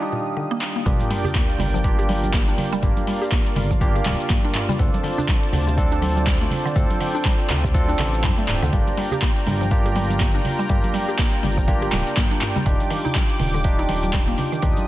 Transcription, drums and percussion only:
0.61 clap
0.86 kick, closed hi-hat, mid tom, cabasa
1.00 closed hi-hat, muted conga, high conga, cabasa
1.11 open hi-hat
1.24 low conga, cabasa
1.35 kick, clap, closed hi-hat, cabasa
1.50 closed hi-hat, cabasa
1.58 open hi-hat, low conga
1.74 muted conga, cabasa
1.84 kick, closed hi-hat, high conga, cabasa
1.99 closed hi-hat, cabasa
2.09 open hi-hat, muted conga, high conga
2.24 closed hi-hat, high conga, cabasa
2.34 kick, clap, closed hi-hat, cabasa
2.48 closed hi-hat, cabasa
2.58 open hi-hat, muted conga, high conga, low conga
2.73 cabasa
2.83 kick, closed hi-hat, mid tom, cabasa
2.97 closed hi-hat, muted conga, high conga, cabasa
3.07 open hi-hat
3.22 cabasa
3.32 kick, clap, closed hi-hat, muted conga, cabasa
3.46 closed hi-hat, cabasa
3.56 open hi-hat, low conga
3.71 kick, muted conga, cabasa
3.80 kick, closed hi-hat, high conga, cabasa
3.96 closed hi-hat, cabasa
4.06 clap, open hi-hat, muted conga, low conga
4.20 closed hi-hat, cabasa
4.30 kick, clap, closed hi-hat, mid tom, high conga, cabasa
4.45 closed hi-hat, cabasa
4.55 clap, mid tom, open hi-hat, muted conga
4.69 low conga, cabasa
4.79 kick, closed hi-hat, mid tom, cabasa
4.94 closed hi-hat, muted conga, high conga, cabasa
5.04 open hi-hat
5.18 low conga, cabasa
5.29 kick, clap, closed hi-hat, muted conga, cabasa
5.43 closed hi-hat, cabasa
5.53 open hi-hat, low conga
5.68 muted conga, cabasa
5.77 kick, closed hi-hat, high conga, cabasa
5.92 closed hi-hat, cabasa
6.02 open hi-hat, muted conga, high conga
6.17 closed hi-hat, high conga, cabasa
6.27 kick, clap, closed hi-hat, cabasa
6.41 closed hi-hat, cabasa
6.51 open hi-hat, muted conga, high conga, low conga
6.67 cabasa
6.76 kick, closed hi-hat, mid tom, cabasa
6.90 closed hi-hat, muted conga, high conga, cabasa
7.01 open hi-hat
7.16 cabasa
7.24 kick, clap, closed hi-hat, muted conga, cabasa
7.40 closed hi-hat, cabasa
7.50 clap, open hi-hat, low conga
7.64 kick, muted conga, cabasa
7.74 kick, closed hi-hat, high conga, cabasa
7.89 closed hi-hat, cabasa
7.99 clap, open hi-hat, muted conga, low conga
8.14 closed hi-hat, cabasa
8.24 kick, clap, closed hi-hat, mid tom, high conga, cabasa
8.39 closed hi-hat, cabasa
8.48 clap, mid tom, open hi-hat, muted conga
8.64 low conga, cabasa
8.73 kick, closed hi-hat, mid tom, cabasa
8.87 closed hi-hat, muted conga, high conga, cabasa
8.97 open hi-hat
9.11 low conga, cabasa
9.22 kick, clap, closed hi-hat, muted conga, cabasa
9.37 closed hi-hat, cabasa
9.47 open hi-hat, low conga
9.61 muted conga, cabasa
9.71 kick, closed hi-hat, high conga, cabasa
9.86 closed hi-hat, cabasa
9.95 open hi-hat, muted conga, high conga
10.10 closed hi-hat, high conga, cabasa
10.20 kick, clap, closed hi-hat, cabasa
10.35 closed hi-hat, cabasa
10.44 open hi-hat, muted conga, high conga, low conga
10.60 cabasa
10.69 kick, closed hi-hat, mid tom, cabasa
10.84 closed hi-hat, muted conga, high conga, cabasa
10.94 open hi-hat
11.09 cabasa
11.19 kick, clap, closed hi-hat, muted conga, cabasa
11.33 closed hi-hat, cabasa
11.43 open hi-hat, low conga
11.58 kick, muted conga, cabasa
11.68 kick, closed hi-hat, high conga, cabasa
11.82 closed hi-hat, cabasa
11.92 clap, open hi-hat, muted conga, low conga
12.07 closed hi-hat, cabasa
12.17 kick, clap, closed hi-hat, mid tom, high conga, cabasa
12.31 closed hi-hat, cabasa
12.41 clap, mid tom, open hi-hat, muted conga
12.56 low conga, cabasa
12.66 kick, closed hi-hat, mid tom, cabasa
12.80 closed hi-hat, muted conga, high conga, cabasa
12.90 open hi-hat
13.05 low conga, cabasa
13.15 kick, clap, closed hi-hat, muted conga, cabasa
13.29 closed hi-hat, cabasa
13.39 open hi-hat, low conga
13.54 muted conga, cabasa
13.64 kick, closed hi-hat, high conga, cabasa
13.79 closed hi-hat, cabasa
13.89 open hi-hat, muted conga, high conga
14.03 closed hi-hat, high conga, cabasa
14.13 kick, clap, closed hi-hat, cabasa
14.28 closed hi-hat, cabasa
14.38 open hi-hat, muted conga, high conga, low conga
14.53 cabasa
14.62 kick, closed hi-hat, mid tom, cabasa
14.77 closed hi-hat, muted conga, high conga, cabasa

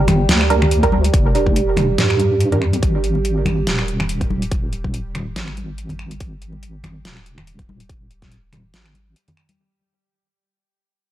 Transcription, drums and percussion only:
0.08 finger snap, closed hi-hat, high conga, low conga
0.29 snare, closed hi-hat
0.41 finger snap
0.50 closed hi-hat
0.62 finger snap, low conga
0.71 closed hi-hat
0.83 kick, closed hi-hat
0.92 high conga
1.04 closed hi-hat
1.14 kick, closed hi-hat
1.35 closed hi-hat
1.46 kick, high conga
1.56 closed hi-hat
1.77 finger snap, closed hi-hat, high conga, low conga
1.98 snare, closed hi-hat
2.10 finger snap
2.20 closed hi-hat, high conga
2.41 closed hi-hat
2.52 closed hi-hat, low conga
2.62 finger snap
2.73 closed hi-hat, high conga
2.83 kick, closed hi-hat
3.04 closed hi-hat
3.15 high conga
3.25 closed hi-hat
3.46 finger snap, closed hi-hat, high conga, low conga
3.67 snare, closed hi-hat
3.79 finger snap
3.88 closed hi-hat
4.00 finger snap, low conga
4.09 closed hi-hat
4.21 kick, closed hi-hat
4.30 high conga
4.42 closed hi-hat
4.52 kick, closed hi-hat
4.73 closed hi-hat
4.84 kick, high conga
4.94 closed hi-hat
5.15 finger snap, closed hi-hat, high conga, low conga
5.36 snare, closed hi-hat
5.48 finger snap
5.57 closed hi-hat, high conga
5.78 closed hi-hat
5.89 closed hi-hat, low conga
5.99 finger snap
6.11 closed hi-hat, high conga
6.20 kick, closed hi-hat
6.42 closed hi-hat
6.53 high conga
6.63 closed hi-hat
6.84 finger snap, closed hi-hat, high conga, low conga
7.05 snare, closed hi-hat
7.17 finger snap
7.26 closed hi-hat
7.38 finger snap, low conga
7.47 closed hi-hat
7.59 kick, closed hi-hat
7.69 high conga
7.80 closed hi-hat
7.89 kick, closed hi-hat
8.11 closed hi-hat
8.22 kick, snare, closed hi-hat, high conga
8.32 closed hi-hat
8.52 finger snap, closed hi-hat, high conga, low conga
8.74 snare, closed hi-hat
8.86 finger snap
8.94 closed hi-hat, high conga
9.16 closed hi-hat
9.28 closed hi-hat, low conga
9.37 finger snap
9.49 closed hi-hat, high conga

